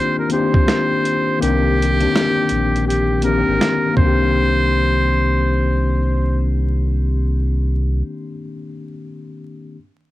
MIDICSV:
0, 0, Header, 1, 5, 480
1, 0, Start_track
1, 0, Key_signature, -3, "minor"
1, 0, Tempo, 731707
1, 923, Time_signature, 4, 2, 24, 8
1, 6632, End_track
2, 0, Start_track
2, 0, Title_t, "Muted trumpet"
2, 0, Program_c, 0, 59
2, 0, Note_on_c, 0, 72, 92
2, 105, Note_off_c, 0, 72, 0
2, 126, Note_on_c, 0, 70, 68
2, 212, Note_on_c, 0, 72, 86
2, 222, Note_off_c, 0, 70, 0
2, 901, Note_off_c, 0, 72, 0
2, 930, Note_on_c, 0, 67, 118
2, 1860, Note_off_c, 0, 67, 0
2, 1890, Note_on_c, 0, 67, 75
2, 2103, Note_off_c, 0, 67, 0
2, 2130, Note_on_c, 0, 70, 83
2, 2580, Note_off_c, 0, 70, 0
2, 2605, Note_on_c, 0, 72, 101
2, 4258, Note_off_c, 0, 72, 0
2, 6632, End_track
3, 0, Start_track
3, 0, Title_t, "Tine electric piano"
3, 0, Program_c, 1, 4
3, 0, Control_c, 1, 64, 127
3, 0, Note_on_c, 1, 51, 68
3, 0, Note_on_c, 1, 58, 65
3, 0, Note_on_c, 1, 60, 60
3, 0, Note_on_c, 1, 62, 63
3, 0, Note_on_c, 1, 65, 78
3, 0, Note_on_c, 1, 67, 96
3, 192, Note_off_c, 1, 51, 0
3, 192, Note_on_c, 1, 51, 71
3, 200, Note_off_c, 1, 58, 0
3, 200, Note_on_c, 1, 58, 63
3, 208, Note_off_c, 1, 60, 0
3, 208, Note_on_c, 1, 60, 64
3, 216, Note_off_c, 1, 62, 0
3, 216, Note_on_c, 1, 62, 67
3, 220, Note_off_c, 1, 67, 0
3, 220, Note_on_c, 1, 67, 85
3, 744, Note_off_c, 1, 51, 0
3, 747, Note_off_c, 1, 58, 0
3, 751, Note_off_c, 1, 60, 0
3, 755, Note_off_c, 1, 62, 0
3, 757, Note_off_c, 1, 67, 0
3, 912, Note_on_c, 1, 51, 75
3, 919, Note_on_c, 1, 58, 68
3, 928, Note_on_c, 1, 60, 66
3, 934, Note_on_c, 1, 62, 66
3, 940, Note_on_c, 1, 70, 82
3, 1190, Note_off_c, 1, 51, 0
3, 1194, Note_off_c, 1, 58, 0
3, 1198, Note_off_c, 1, 60, 0
3, 1201, Note_off_c, 1, 62, 0
3, 1205, Note_off_c, 1, 70, 0
3, 1304, Note_on_c, 1, 50, 58
3, 1310, Note_on_c, 1, 58, 59
3, 1317, Note_on_c, 1, 60, 58
3, 1324, Note_on_c, 1, 62, 66
3, 1332, Note_on_c, 1, 67, 75
3, 1341, Note_off_c, 1, 50, 0
3, 1347, Note_on_c, 1, 51, 68
3, 1905, Note_off_c, 1, 58, 0
3, 1908, Note_off_c, 1, 60, 0
3, 1912, Note_off_c, 1, 62, 0
3, 1916, Note_off_c, 1, 67, 0
3, 1923, Note_off_c, 1, 51, 0
3, 2107, Note_on_c, 1, 50, 57
3, 2113, Note_on_c, 1, 58, 64
3, 2120, Note_on_c, 1, 60, 63
3, 2127, Note_on_c, 1, 62, 67
3, 2135, Note_on_c, 1, 67, 79
3, 2150, Note_on_c, 1, 51, 71
3, 2170, Note_off_c, 1, 50, 0
3, 2542, Note_off_c, 1, 51, 0
3, 2550, Note_on_c, 1, 51, 78
3, 2570, Note_off_c, 1, 58, 0
3, 2578, Note_on_c, 1, 58, 73
3, 2597, Note_off_c, 1, 60, 0
3, 2604, Note_on_c, 1, 60, 71
3, 2605, Note_off_c, 1, 62, 0
3, 2609, Note_off_c, 1, 67, 0
3, 2612, Control_c, 1, 64, 0
3, 2614, Note_off_c, 1, 65, 0
3, 2632, Note_on_c, 1, 62, 71
3, 2661, Note_on_c, 1, 67, 85
3, 2699, Control_c, 1, 64, 127
3, 2852, Control_c, 1, 64, 0
3, 2949, Control_c, 1, 64, 127
3, 5407, Note_off_c, 1, 51, 0
3, 5435, Note_off_c, 1, 58, 0
3, 5462, Note_off_c, 1, 60, 0
3, 5490, Note_off_c, 1, 62, 0
3, 5519, Note_off_c, 1, 67, 0
3, 6410, Control_c, 1, 64, 0
3, 6632, End_track
4, 0, Start_track
4, 0, Title_t, "Sub bass"
4, 0, Program_c, 2, 38
4, 931, Note_on_c, 2, 36, 100
4, 1359, Note_off_c, 2, 36, 0
4, 1647, Note_on_c, 2, 34, 86
4, 2253, Note_off_c, 2, 34, 0
4, 2281, Note_on_c, 2, 32, 93
4, 2357, Note_off_c, 2, 32, 0
4, 2608, Note_on_c, 2, 36, 92
4, 5264, Note_off_c, 2, 36, 0
4, 6632, End_track
5, 0, Start_track
5, 0, Title_t, "Drums"
5, 195, Note_on_c, 9, 42, 60
5, 261, Note_off_c, 9, 42, 0
5, 355, Note_on_c, 9, 36, 98
5, 421, Note_off_c, 9, 36, 0
5, 447, Note_on_c, 9, 38, 104
5, 455, Note_on_c, 9, 42, 77
5, 513, Note_off_c, 9, 38, 0
5, 521, Note_off_c, 9, 42, 0
5, 691, Note_on_c, 9, 42, 57
5, 757, Note_off_c, 9, 42, 0
5, 934, Note_on_c, 9, 42, 84
5, 1000, Note_off_c, 9, 42, 0
5, 1197, Note_on_c, 9, 42, 66
5, 1262, Note_off_c, 9, 42, 0
5, 1315, Note_on_c, 9, 42, 32
5, 1381, Note_off_c, 9, 42, 0
5, 1415, Note_on_c, 9, 38, 103
5, 1425, Note_on_c, 9, 42, 79
5, 1480, Note_off_c, 9, 38, 0
5, 1491, Note_off_c, 9, 42, 0
5, 1634, Note_on_c, 9, 42, 60
5, 1700, Note_off_c, 9, 42, 0
5, 1809, Note_on_c, 9, 42, 34
5, 1875, Note_off_c, 9, 42, 0
5, 1904, Note_on_c, 9, 42, 65
5, 1970, Note_off_c, 9, 42, 0
5, 2113, Note_on_c, 9, 42, 63
5, 2178, Note_off_c, 9, 42, 0
5, 2369, Note_on_c, 9, 38, 109
5, 2377, Note_on_c, 9, 42, 77
5, 2435, Note_off_c, 9, 38, 0
5, 2443, Note_off_c, 9, 42, 0
5, 2603, Note_on_c, 9, 36, 95
5, 2668, Note_off_c, 9, 36, 0
5, 6632, End_track
0, 0, End_of_file